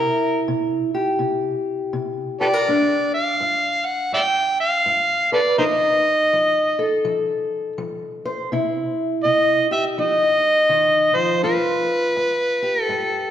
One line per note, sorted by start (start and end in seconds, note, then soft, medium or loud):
0.00 0.42 C3 medium
0.00 2.64 E4 medium
0.00 0.45 A#4 medium
0.48 1.15 C3 medium
0.94 2.40 G4 medium
1.19 1.87 C3 medium
1.93 2.61 C3 medium
2.41 2.54 G4 medium
2.41 2.48 A4 medium
2.41 2.49 B4 medium
2.41 3.09 D5 medium
2.54 2.67 A#4 soft
2.68 3.35 G2 medium
2.68 5.57 D4 medium
3.14 3.87 F5 medium
3.40 4.08 G2 medium
3.85 4.13 F#5 medium
4.12 4.80 G2 medium
4.12 4.22 D5 medium
4.12 4.20 E5 medium
4.12 4.56 G5 loud
4.60 5.29 F5 medium
4.86 5.54 G2 medium
5.32 5.40 A4 soft
5.32 5.56 B4 medium
5.32 5.42 B4 soft
5.32 5.58 D5 medium
5.58 6.26 F3 medium
5.58 8.48 D#4 medium
5.58 5.65 A#4 medium
5.58 5.65 C5 medium
5.58 7.01 D#5 medium
6.33 7.00 F3 medium
6.79 8.48 A4 medium
7.05 7.72 F3 medium
7.78 8.46 F3 medium
8.25 8.49 C5 medium
8.52 9.19 C3 medium
8.52 9.95 E4 medium
9.24 9.92 C3 medium
9.24 9.66 D#5 loud
9.71 9.94 G4 medium
9.71 9.84 E5 medium
9.98 10.65 F3 medium
9.98 11.41 D#4 medium
9.98 11.17 D#5 loud
10.69 11.15 D#3 medium
11.15 11.43 F3 medium
11.15 11.43 C5 medium
11.43 12.11 G2 medium
11.43 13.31 F4 medium
11.43 12.83 B4 medium
12.16 12.84 G2 medium
12.62 13.31 G4 medium
12.83 13.31 A4 medium
12.89 13.31 G2 medium